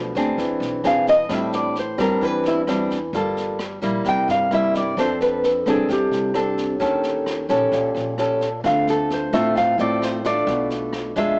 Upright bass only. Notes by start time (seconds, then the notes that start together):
Already playing: B1
0.15 D2
0.38 E2
0.60 B1
1.29 A1
1.98 E2
2.21 E2
2.44 E2
3.13 G1
3.82 A#1
4.05 C2
4.28 G2
4.97 F2
5.66 C2
5.89 C2
6.11 C2
6.80 D#2
7.49 A#1
7.71 A#1
7.94 A#1
8.64 D2
9.33 A1
9.55 A1
9.78 A1
10.47 B1
11.16 F2